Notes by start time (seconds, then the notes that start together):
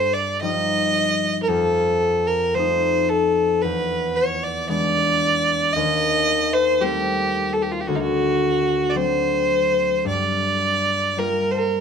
Already playing: G2 A#3 D4 C5
0.14 D5
0.41 F3 G3 D#4 D#5
1.43 A#4
1.48 F2 A4
2.27 A#4
2.55 F3 A3 C5
2.59 D#4
3.09 A4
3.62 E2 B4
4.16 C#5
4.43 D5
4.69 E3 G#3 D4 D5
5.73 D#2 D#5
6.54 C5
6.81 G3 A3 C4 G4
7.53 A4
7.62 G4
7.72 F4
7.80 G4
7.87 D2 F#4
7.96 D#4
8.00 F#4
8.90 D5
8.95 F#3 C4 D4 C5
10.05 G2 D5
11.17 G3 A#3 F4 A#4
11.51 A#4 C5